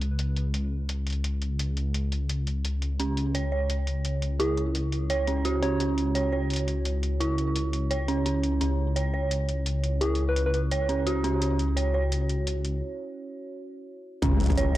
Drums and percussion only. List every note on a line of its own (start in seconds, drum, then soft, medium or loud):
0.01 closed hi-hat soft
0.19 closed hi-hat medium
0.37 closed hi-hat soft
0.54 closed hi-hat medium
0.89 closed hi-hat medium
1.07 closed hi-hat soft
1.10 closed hi-hat soft
1.12 closed hi-hat soft
1.24 closed hi-hat medium
1.42 closed hi-hat soft
1.59 closed hi-hat medium
1.77 closed hi-hat soft
1.94 closed hi-hat medium
2.12 closed hi-hat soft
2.29 closed hi-hat medium
2.47 closed hi-hat soft
2.65 closed hi-hat medium
2.82 closed hi-hat soft
3.00 closed hi-hat medium
3.17 closed hi-hat soft
3.35 closed hi-hat medium
3.70 closed hi-hat medium
3.87 closed hi-hat soft
4.05 closed hi-hat medium
4.22 closed hi-hat soft
4.40 closed hi-hat medium
4.57 closed hi-hat soft
4.75 closed hi-hat medium
4.92 closed hi-hat soft
5.10 closed hi-hat medium
5.27 closed hi-hat soft
5.45 closed hi-hat medium
5.63 closed hi-hat soft
5.80 closed hi-hat medium
5.98 closed hi-hat soft
6.15 closed hi-hat medium
6.50 closed hi-hat soft
6.54 closed hi-hat soft
6.56 closed hi-hat medium
6.68 closed hi-hat soft
6.85 closed hi-hat medium
7.03 closed hi-hat soft
7.21 closed hi-hat medium
7.38 closed hi-hat soft
7.56 closed hi-hat medium
7.73 closed hi-hat soft
7.91 closed hi-hat medium
8.08 closed hi-hat soft
8.26 closed hi-hat medium
8.43 closed hi-hat soft
8.61 closed hi-hat medium
8.96 closed hi-hat medium
9.31 closed hi-hat medium
9.49 closed hi-hat soft
9.66 closed hi-hat medium
9.84 closed hi-hat soft
10.01 closed hi-hat medium
10.15 closed hi-hat soft
10.36 closed hi-hat medium
10.54 closed hi-hat soft
10.71 closed hi-hat medium
10.89 closed hi-hat soft
11.07 closed hi-hat medium
11.24 closed hi-hat soft
11.42 closed hi-hat medium
11.59 closed hi-hat soft
11.77 closed hi-hat medium
12.12 closed hi-hat medium
12.29 closed hi-hat soft
12.47 closed hi-hat medium
12.65 closed hi-hat soft
14.22 kick loud
14.22 closed hi-hat medium
14.40 closed hi-hat soft
14.43 closed hi-hat soft
14.46 kick medium
14.46 closed hi-hat soft
14.50 closed hi-hat soft
14.52 closed hi-hat soft
14.55 closed hi-hat soft
14.58 closed hi-hat medium